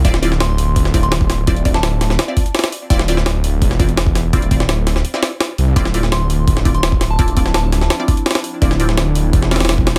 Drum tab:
HH |o---o---o---o---o---o-x-o---o---|o-x-o---o---o---o---o-x-ooo-o---|o---o---o---o---o---o-x-o---o---|o-x-o---o---o---o---o---o---o---|
SD |--o---o-o---------o-----o---o---|------o-o---o-o-o-------ooo-----|--o---o-o---------o-----o---o---|------o-o---o-o---o-o---o-------|
BD |o---------------o---o-----o-----|o---o---------------o-----------|o---------------o---o-----o-----|o---o---------------------------|

HH |o---o---o---o---o---o-x-o---o---|o-x-o---o---o---o---o-x-ooo-o---|o---o---o---o---o---ooooo---o---|
SD |--o---o-o---------o-----o---o---|------o-o---o-o-o-------ooo-----|--o---o-o---------o-ooooo---o---|
BD |o---------------o---o-----o-----|o---o---------------o-----------|o---------------o---------o-----|